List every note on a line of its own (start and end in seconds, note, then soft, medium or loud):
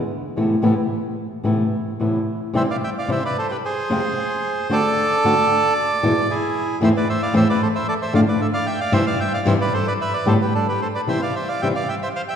0.36 0.54 A2 medium
0.36 0.55 C3 medium
0.36 0.55 E3 medium
0.36 0.55 A3 medium
0.36 0.55 B3 medium
0.36 0.55 E4 medium
0.62 0.72 A2 medium
0.62 0.73 C3 medium
0.62 0.73 E3 medium
0.62 0.73 A3 medium
0.62 0.73 B3 medium
0.62 0.73 E4 medium
1.43 1.62 A2 medium
1.43 1.62 C3 medium
1.43 1.62 E3 medium
1.43 1.63 A3 medium
1.43 1.63 B3 medium
1.43 1.63 E4 medium
2.00 2.18 A2 medium
2.00 2.18 C3 medium
2.00 2.18 E3 medium
2.00 2.18 A3 medium
2.00 2.19 B3 medium
2.00 2.19 E4 medium
2.54 2.64 C3 medium
2.54 2.64 E3 medium
2.54 2.64 G3 medium
2.54 2.65 C4 loud
2.54 2.65 E4 medium
2.54 2.62 C5 medium
2.54 2.63 E5 medium
2.71 2.77 D5 medium
2.71 2.77 F5 medium
2.84 2.90 E5 medium
2.84 2.90 G5 medium
2.98 3.10 D5 medium
2.98 3.11 F5 medium
3.08 3.18 C3 medium
3.08 3.18 E3 medium
3.08 3.19 G3 medium
3.08 3.19 C4 medium
3.08 3.19 E4 loud
3.08 3.24 C5 medium
3.08 3.24 E5 medium
3.26 3.37 B4 medium
3.26 3.37 D5 medium
3.38 3.47 A4 medium
3.38 3.47 C5 medium
3.49 3.57 G4 medium
3.49 3.57 B4 medium
3.49 3.51 C5 medium
3.65 4.68 G#4 medium
3.65 4.75 C5 medium
3.90 3.99 F2 medium
3.90 4.00 C3 medium
3.90 4.00 F3 medium
3.90 4.00 G#3 medium
3.90 4.00 C4 medium
3.90 4.00 F4 medium
4.70 4.79 D3 medium
4.70 4.80 A3 medium
4.70 4.80 C4 medium
4.70 4.80 F#4 medium
4.70 5.73 A4 medium
4.70 6.34 D5 loud
5.24 5.33 D3 medium
5.24 5.33 A3 medium
5.24 5.34 C4 medium
5.24 5.34 F#4 loud
6.03 6.12 E2 medium
6.03 6.12 B2 medium
6.03 6.12 E3 medium
6.03 6.12 G#3 medium
6.03 6.12 B3 medium
6.03 6.12 E4 medium
6.30 6.79 E4 medium
6.30 6.79 G#4 medium
6.81 6.90 E2 medium
6.81 6.90 A2 medium
6.81 6.91 E3 medium
6.81 6.91 A3 medium
6.81 6.91 C4 loud
6.81 6.91 E4 loud
6.81 6.89 C5 medium
6.81 6.89 E5 medium
6.97 7.08 B4 medium
6.97 7.08 D5 medium
7.09 7.21 C5 medium
7.09 7.22 E5 medium
7.23 7.34 D5 medium
7.23 7.34 F5 medium
7.34 7.43 E2 medium
7.34 7.43 A2 medium
7.34 7.43 E3 medium
7.34 7.43 A3 loud
7.34 7.43 C4 loud
7.34 7.43 E4 loud
7.34 7.48 C5 medium
7.34 7.48 E5 medium
7.50 7.61 B4 medium
7.50 7.62 D5 medium
7.62 7.68 A4 medium
7.62 7.68 C5 medium
7.75 7.87 C5 medium
7.75 7.87 E5 medium
7.88 7.94 A4 medium
7.88 7.94 D5 loud
8.02 8.14 C5 medium
8.02 8.14 E5 medium
8.13 8.22 F2 medium
8.13 8.23 A2 medium
8.13 8.23 D3 medium
8.13 8.23 A3 medium
8.13 8.23 D4 loud
8.13 8.23 F4 medium
8.13 8.21 D5 medium
8.13 8.20 F5 loud
8.28 8.40 B4 medium
8.28 8.41 D5 medium
8.41 8.47 A4 medium
8.41 8.47 E5 medium
8.53 8.66 D5 medium
8.53 8.67 F5 loud
8.66 8.79 E5 medium
8.66 8.80 G5 medium
8.80 8.93 D5 medium
8.80 8.93 F5 loud
8.92 9.02 G2 loud
8.92 9.02 C3 medium
8.92 9.02 E3 medium
8.92 9.02 G3 medium
8.92 9.02 C4 medium
8.92 9.02 E4 loud
8.92 9.06 C5 medium
8.92 9.05 E5 loud
9.07 9.19 D5 medium
9.07 9.20 F5 loud
9.20 9.33 E5 medium
9.20 9.33 G5 medium
9.33 9.46 D5 medium
9.33 9.47 F5 medium
9.45 9.55 G2 loud
9.45 9.55 C3 medium
9.45 9.56 E3 medium
9.45 9.56 G3 loud
9.45 9.56 C4 loud
9.45 9.56 E4 medium
9.45 9.54 C5 medium
9.45 9.53 E5 medium
9.61 9.73 B4 medium
9.61 9.73 D5 medium
9.73 9.86 A4 medium
9.73 9.87 C5 medium
9.87 9.94 B4 medium
9.87 9.93 D5 medium
10.01 10.13 B4 medium
10.01 10.15 E5 medium
10.14 10.27 B4 medium
10.14 10.28 D5 medium
10.26 10.36 G2 medium
10.26 10.36 A2 medium
10.26 10.36 D3 loud
10.26 10.36 G3 medium
10.26 10.36 B3 medium
10.26 10.36 G4 loud
10.26 10.34 A4 medium
10.26 10.34 C5 medium
10.41 10.54 G4 medium
10.41 10.53 B4 medium
10.55 10.67 D4 medium
10.55 10.67 A4 medium
10.68 10.81 G4 medium
10.68 10.81 B4 medium
10.81 10.88 A4 medium
10.81 10.87 C5 medium
10.95 11.02 B4 medium
10.95 11.01 D5 medium
11.07 11.17 C3 medium
11.07 11.17 E3 medium
11.07 11.17 G3 medium
11.07 11.18 C4 medium
11.07 11.18 E4 medium
11.07 11.21 C5 medium
11.07 11.21 E5 loud
11.22 11.35 D5 medium
11.22 11.36 F5 medium
11.35 11.48 C5 medium
11.35 11.49 E5 medium
11.48 11.61 D5 medium
11.48 11.62 F5 medium
11.62 11.71 C3 medium
11.62 11.72 E3 medium
11.62 11.72 G3 loud
11.62 11.72 C4 medium
11.62 11.72 E4 medium
11.62 11.68 E5 medium
11.62 11.68 G5 loud
11.75 11.88 D5 medium
11.75 11.88 F5 medium
11.88 11.96 E5 medium
11.88 11.95 G5 medium
12.02 12.09 C5 medium
12.02 12.08 E5 loud
12.16 12.22 C5 medium
12.16 12.22 F5 loud
12.28 12.36 E5 medium
12.28 12.34 G5 medium